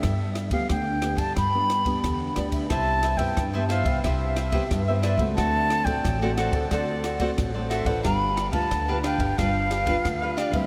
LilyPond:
<<
  \new Staff \with { instrumentName = "Flute" } { \time 4/4 \key g \mixolydian \tempo 4 = 90 e''8. f''16 g''8. a''16 b''4 r8 d''16 e''16 | a''8. g''8. f''8 e''4. d''16 e''16 | a''8. g''8. fis''8 d''4 r8 e''16 fis''16 | b''8. a''8. g''8 f''4. d''16 e''16 | }
  \new Staff \with { instrumentName = "Cavaquinho" } { \time 4/4 \key g \mixolydian r1 | <e' b' c'' e''>8 <e' b' c'' e''>16 <b' c'' e''>8 <e' b' c'' e''>16 <e' b' c'' e''>16 <b' c'' e''>16 <e' b' c'' e''>8 <e' b' c'' e''>16 <e' b' c'' e''>16 r16 <b' c'' e''>16 <e' b' c'' e''>16 <b' c'' e''>16 | <fis' a' c'' d''>8 <fis' a' c'' d''>16 <a' c'' d''>8 <fis' a' c'' d''>16 <fis' a' c'' d''>16 <a' c'' d''>16 <fis' a' c'' d''>8 <fis' a' c'' d''>16 <fis' a' c'' d''>16 r16 <a' c'' d''>16 <fis' a' c'' d''>16 <a' c'' d''>16 | <d' g' b' f''>8 <d' g' b' f''>16 <g' b' f''>8 <d' g' b' f''>16 <d' g' b' f''>16 <g' b' f''>16 <d' g' b' f''>8 <d' g' b' f''>16 <d' g' b' f''>16 r16 <g' b' f''>16 <d' g' b' f''>16 <g' b' f''>16 | }
  \new Staff \with { instrumentName = "Nylon-string guitar" } { \time 4/4 \key g \mixolydian << { <b d' g'>8. <b d' g'>8. <b d' g'>8 r16 <b d' g'>8 <b d' g'>8. <b d' g'>8 | <e' g'>8 r16 <b e' g'>8 <b e' g'>8. <e' g'>8 r16 <b e' g'>8 <b e' g'>8 <a c' fis'>16~ | <a c' fis'>8. <a c' fis'>8 <a c' fis'>8. <a c' fis'>8 r16 <a c' fis'>8 <a c' fis'>8 <d' f' b'>16~ | <d' f' b'>8. <d' f' b'>8 <d' f' b'>8. <d' f' b'>8. <d' f' b'>8 <d' f' b'>8 <g c' e'>16 | } \\ { g4 d4 g4 d4 | c4 g,4 c4 g,4 | d4 a,4 d4 a,4 | g4 d4 g4 d4 | } >> }
  \new Staff \with { instrumentName = "Upright bass" } { \clef bass \time 4/4 \key g \mixolydian g,8. d,16 d,8. g,16 g,4 e,8 d,8 | c,8. g,16 g,8. c,16 c,4 g,8. des,16 | d,8. a,,16 a,,8. d,16 d,4 a,,8. a,,16 | g,,8. d,16 d,8. g,,16 g,,4 d,8. d,16 | }
  \new DrumStaff \with { instrumentName = "Drums" } \drummode { \time 4/4 <bd cymr ss>8 <cymr ss>16 <bd cymr>16 <bd cymr ss>8 <cymr ss>16 <bd cymr>16 <bd cymr ss>8 <cymr ss>16 <bd cymr>16 <bd cymr ss>8 <cymr ss>16 <bd cymr>16 | <bd cymr ss>8 <cymr ss>16 <bd cymr>16 <bd cymr ss>8 <cymr ss>16 <bd cymr>16 <bd cymr ss>8 <cymr ss>16 <bd cymr>16 <bd cymr ss>8 <cymr ss>16 <bd cymr>16 | <bd cymr ss>8 <cymr ss>16 <bd cymr>16 <bd cymr ss>8 <cymr ss>16 <bd cymr>16 <bd cymr ss>8 <cymr ss>16 <bd cymr>16 <bd cymr ss>8 <cymr ss>16 <bd cymr>16 | <bd cymr ss>8 <cymr ss>16 <bd cymr>16 <bd cymr ss>8 <cymr ss>16 <bd cymr>16 <bd cymr ss>8 <cymr ss>16 <bd cymr>16 <bd cymr ss>8 <cymr ss>16 <bd cymr>16 | }
>>